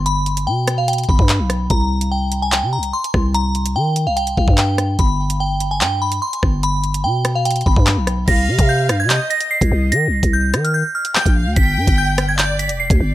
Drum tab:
CC |--------------------------------|--------------------------------|--------------------------------|--------------------------------|
HH |x---x-x-----x---xxxx----x---x---|x-----x-----x---x-----x---x-----|x---x-x-----x---x-x-----x---x---|x-----x-----x---x-----x---x-----|
CP |------------------------x-------|----------------x---------------|------------------------x-------|----------------x---------------|
SD |------------r---------------r---|----------------------------r---|----------------------------r---|----------------------------r---|
BD |--------------------o-o---------|o---------------------------o---|--------------------o-o---------|o---------------------------o---|

CC |--------------------------------|x-------------------------------|--------------------------------|--------------------------------|
HH |x---x-x-----x---xxxx----x---x---|x-----x-----x---x---x-x---x-----|x-----x-----x-x-------x---x-----|x-----x-----x---x---x-x---x-----|
CP |------------------------x-------|----------------x---------------|------------------------x-------|----------------x---------------|
SD |------------r---------------r---|------------r-------------------|------------r-------------------|------------r-------------------|
BD |--------------------o-o---------|o-----o-------------------o-----|------o-------------------o-----|o-----o-------------------o-----|